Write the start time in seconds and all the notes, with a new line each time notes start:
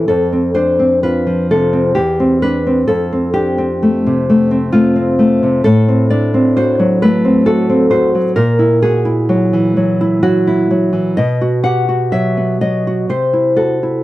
0.08 F2 A4
0.33 C4
0.55 D4 C5
0.79 C4
1.03 F4 B4
1.27 F3
1.51 C3 A4
1.73 C4
1.95 E2 G4
2.20 C4
2.42 D4 B4
2.67 C4
2.87 F2 A4
3.12 C4
3.34 D4 G4
3.58 C4
3.83 A3
4.06 C3
4.30 A3
4.51 C4
4.72 A3 F4
4.96 C4
5.19 A3
5.43 C3
5.64 A2 A4
5.88 C4
6.10 D4 D5
6.34 C4
6.57 F#4 C5
6.79 F#3
7.02 A3 B4
7.25 C4
7.46 F#4 A4
7.70 C4
7.91 F#4 C5
8.15 F#3
8.36 A#2 A#4
8.59 E4
8.82 F#4 G#4
9.05 E4
9.29 F#3
9.53 E3
9.77 F#3
10.01 E4
10.23 F#3 F#4
10.47 E4
10.71 F#3
10.93 E3
11.17 B2 D#5
11.41 F#4
11.64 G4 F#5
11.89 F#4
12.12 F#3 E5
12.37 B3
12.61 F#3 D#5
12.87 F#4
13.09 C3 C5
13.33 E4
13.56 F#4 A4
13.83 E4